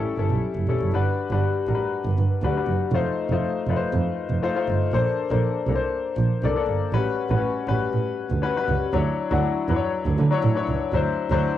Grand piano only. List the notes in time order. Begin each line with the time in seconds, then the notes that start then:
Already playing: G3 C#4 E4 A4 E5 G5
0.18 G3 C#4 E4 A4
0.68 G3 C#4 E4 A4
0.93 G3 D4 F#4 B4
1.31 G3 D4 F#4 B4
1.68 G3 D4 F#4 A#4
1.75 B4
2.43 G3 D4 F#4 B4
2.56 G3 D4 F#4 B4
2.94 A3 D#4 F4 C5
3.31 A3 D#4 F4 C5
3.69 A3 D#4 F4 B4
3.76 C5
4.42 A3 D#4 F4 C5
4.55 A3 D#4 F4 C5
4.93 A#3 D4 A4 C5
5.30 A#3 D4 A4 C5
5.68 A#3 D4 A4 A#4
5.75 C5
6.43 A#3 D4 A4 D5
6.56 A#3 D4 A4 D5
6.93 G3 C#4 F#4 B4
7.29 G3 C#4 F#4 B4
7.67 G3 C#4 F#4 B4
8.42 G3 C#4 F#4 B4
8.56 G3 C#4 F#4 B4
8.93 F#3 D4 E4 C#5
9.31 F#3 D4 E4 F#4
9.69 F#3 D4 E4 B4
9.76 C#5
10.31 F#3 D4 E4 C#5
10.55 F#3 D4 E4 C#5
10.94 F#3 D4 E4 C5
11.31 F#3 D4 E4 C5